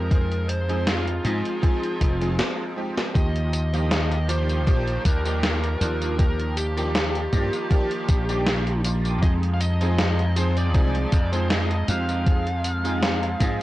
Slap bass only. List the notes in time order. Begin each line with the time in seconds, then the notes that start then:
Already playing: F2
1.25 G#2
2.01 F1
3.15 D#2
4.67 A#1
5.05 D#2
5.81 D#2
7.33 G2
8.09 A#1
9.22 F2
10.74 C2
11.12 F2
11.88 F2
13.40 G#2